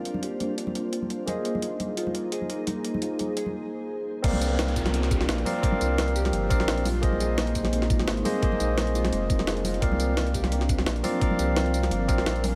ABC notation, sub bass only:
X:1
M:4/4
L:1/8
Q:"Swing 16ths" 1/4=172
K:Cm
V:1 name="Sub bass" clef=bass
z8 | z8 | z8 | C,,6 B,,, z |
z C,,3 G,,, B,,, B,,,2 | B,,,6 A,,, z | z B,,,3 F,,, F,,,3 | C,,6 B,,, z |
z C,,3 G,,, B,,, B,,,2 |]